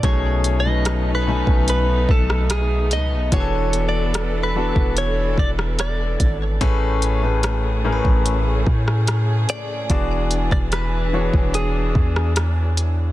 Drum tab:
HH |x-x-x---x---x-x-|x-x-x---x---x-x-|x-x-x---x---x-x-|x-x-x---x---x-x-|
SD |----r------rr---|----r------rr---|----r------rr---|---rr------rr---|
BD |o------o--o-----|o------o--o---o-|o------o--o-----|o--o---o--o-----|